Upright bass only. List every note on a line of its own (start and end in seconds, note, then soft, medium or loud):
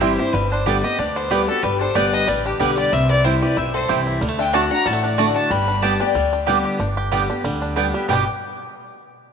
0.00 0.16 G1 medium
0.34 0.80 G1 loud
0.99 1.45 D2 medium
1.63 1.86 G1 medium
1.95 2.23 G1 medium
2.28 2.55 A1 medium
2.60 2.88 B1 medium
2.93 3.39 C2 loud
3.57 3.84 B1 medium
3.89 4.17 C2 medium
4.21 4.68 D2 medium
4.86 5.32 A1 medium
5.51 5.97 G1 loud
6.15 6.61 D2 medium
6.80 7.26 G1 medium
7.44 7.91 D2 medium
8.09 8.25 G1 medium